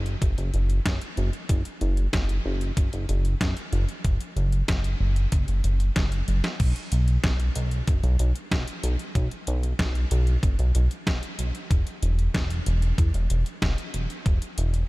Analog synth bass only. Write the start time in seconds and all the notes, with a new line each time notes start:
Already playing: F#1
0.22 F#1
0.38 F#1
0.54 F#1
0.86 F#2
1.18 F#1
1.49 F#1
1.81 F#1
2.13 F#1
2.45 F#1
2.77 F#1
2.93 F#1
3.09 F#1
3.41 F#2
3.73 F#1
4.05 F#1
4.36 F#1
4.69 F#1
5.00 F#1
5.32 F#1
5.48 F#1
5.64 F#1
5.96 F#1
6.28 F#1
6.60 B1
6.92 B1
7.24 B1
7.56 B1
7.88 F#1
8.04 B1
8.20 B1
8.51 B1
8.84 B1
9.15 B1
9.47 B1
9.79 B1
10.11 B1
10.43 F#1
10.59 B1
10.75 B1
11.07 B1
11.39 B1
11.71 E1
12.03 E1
12.34 E1
12.67 E1
12.98 E2
13.14 E1
13.30 E1
13.62 E1
13.94 E1
14.26 E1
14.58 E1